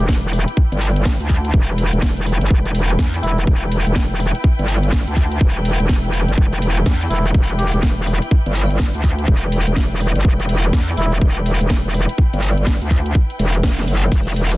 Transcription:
Already playing: E4 B4 G5
0.00 E1
0.09 kick, snare
0.23 E1
0.33 open hi-hat
0.48 closed hi-hat
0.57 kick
0.72 G1, closed hi-hat
0.81 open hi-hat
0.96 closed hi-hat
1.05 kick, snare
1.20 D2, closed hi-hat
1.30 kick, open hi-hat
1.45 closed hi-hat
1.54 E1, kick
1.78 open hi-hat
1.93 E1, closed hi-hat
2.02 kick, snare
2.17 E1, closed hi-hat
2.26 open hi-hat
2.41 G1, closed hi-hat
2.51 E1, kick
2.65 closed hi-hat
2.75 E1, open hi-hat
2.90 closed hi-hat
2.99 E2, kick, snare
3.14 closed hi-hat
3.23 E1 E4, open hi-hat
3.38 closed hi-hat
3.47 E1, kick
3.72 open hi-hat
3.87 E1, closed hi-hat
3.96 kick, snare
4.11 E1
4.20 open hi-hat
4.35 closed hi-hat
4.44 kick
4.59 G1, closed hi-hat
4.68 open hi-hat
4.83 closed hi-hat
4.92 kick, snare
5.07 D2, closed hi-hat
5.17 kick, open hi-hat
5.32 closed hi-hat
5.41 E1, kick
5.65 open hi-hat
5.80 E1, closed hi-hat
5.89 kick, snare
6.04 closed hi-hat
6.13 open hi-hat
6.28 G1, closed hi-hat
6.38 E1, kick
6.53 closed hi-hat
6.62 E1, open hi-hat
6.77 closed hi-hat
6.86 E2, kick, snare
7.01 closed hi-hat
7.10 E1 E4, open hi-hat
7.25 closed hi-hat
7.34 E1, kick
7.59 G4, open hi-hat
7.74 E1 G4, closed hi-hat
7.83 kick, snare
7.98 E1
8.07 open hi-hat
8.22 closed hi-hat
8.31 kick
8.46 G1, closed hi-hat
8.55 open hi-hat
8.70 closed hi-hat
8.80 kick, snare
8.94 D2, closed hi-hat
9.04 kick, open hi-hat
9.19 closed hi-hat
9.28 E1, kick
9.52 open hi-hat
9.67 E1, closed hi-hat
9.76 kick, snare
9.91 E1, closed hi-hat
10.00 open hi-hat
10.15 G1, closed hi-hat
10.25 E1, kick
10.40 closed hi-hat
10.49 E1, open hi-hat
10.64 closed hi-hat
10.73 E2, kick, snare
10.88 closed hi-hat
10.97 E1 E4, open hi-hat
11.12 closed hi-hat
11.21 E1, kick
11.46 open hi-hat
11.61 E1, closed hi-hat
11.70 kick, snare
11.85 E1
11.94 open hi-hat
12.09 closed hi-hat
12.18 kick
12.33 G1, closed hi-hat
12.43 open hi-hat
12.57 closed hi-hat
12.67 kick, snare
12.82 D2, closed hi-hat
12.91 kick, open hi-hat
13.06 closed hi-hat
13.15 kick
13.30 closed hi-hat
13.39 E1, open hi-hat
13.54 closed hi-hat
13.63 kick, snare
13.78 snare, closed hi-hat
13.88 F#1, open hi-hat
14.03 closed hi-hat
14.12 E1, kick, crash, shekere
14.27 closed hi-hat, shekere
14.36 E1, open hi-hat
14.51 closed hi-hat, shekere

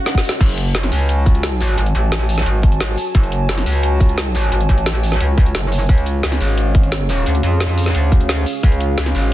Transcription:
Already playing: C#4 G#4 C#5 F5, swell
0.06 snare, closed hi-hat
0.15 kick, snare
0.23 open hi-hat
0.29 snare
0.40 F#1 F#4 C#5 G#5 A5, kick, closed hi-hat, crash
0.49 closed hi-hat
0.58 closed hi-hat
0.75 snare, closed hi-hat
0.83 snare, closed hi-hat
0.92 C#2, open hi-hat
1.09 closed hi-hat
1.26 kick, closed hi-hat
1.35 closed hi-hat
1.43 snare, closed hi-hat
1.60 open hi-hat
1.78 G#1, closed hi-hat
1.86 closed hi-hat
1.95 A1, closed hi-hat
2.12 snare, closed hi-hat
2.21 closed hi-hat
2.29 open hi-hat
2.38 snare
2.46 G#1, closed hi-hat
2.63 kick, closed hi-hat
2.72 closed hi-hat
2.81 snare, closed hi-hat
2.98 open hi-hat
3.15 F#1, kick, closed hi-hat
3.23 closed hi-hat
3.32 closed hi-hat
3.49 snare, closed hi-hat
3.58 snare, closed hi-hat
3.66 C#2, open hi-hat
3.83 closed hi-hat
4.00 kick, closed hi-hat
4.09 closed hi-hat
4.18 snare, closed hi-hat
4.35 open hi-hat
4.52 G#1, closed hi-hat
4.60 closed hi-hat
4.69 A1, kick, closed hi-hat
4.78 closed hi-hat
4.86 snare, closed hi-hat
4.95 closed hi-hat
5.03 open hi-hat
5.12 snare
5.21 C#2, closed hi-hat
5.38 kick, closed hi-hat
5.46 closed hi-hat
5.55 F#1, snare, closed hi-hat
5.72 open hi-hat
5.89 C#2 C#4 G#4 F5, kick, closed hi-hat
5.98 closed hi-hat
6.06 closed hi-hat
6.23 snare, closed hi-hat
6.32 snare, closed hi-hat
6.40 G#1, open hi-hat
6.58 closed hi-hat
6.75 kick, closed hi-hat
6.83 closed hi-hat
6.92 snare, closed hi-hat
7.09 open hi-hat
7.26 D2, closed hi-hat
7.35 closed hi-hat
7.43 F2, closed hi-hat
7.60 snare, closed hi-hat
7.69 closed hi-hat
7.78 open hi-hat
7.86 snare
7.95 D2, closed hi-hat
8.12 kick, closed hi-hat
8.21 closed hi-hat
8.29 snare, closed hi-hat
8.46 open hi-hat
8.63 C#2, kick, closed hi-hat
8.72 closed hi-hat
8.81 closed hi-hat
8.98 snare, closed hi-hat
9.06 snare, closed hi-hat
9.15 G#1, open hi-hat

